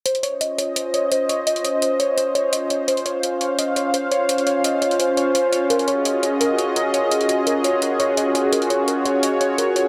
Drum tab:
HH |xxx-x-x-x-x-x-x-|xxx-x-x-x-x-x-x-|xxx-x-x-x-x-x-x-|xxx-x-xxx-x-x-x-|

HH |xxx-x-x-x-x-x-x-|xxx-x-x-x-x-x-x-|xxx-x-x-x-x-x-x-|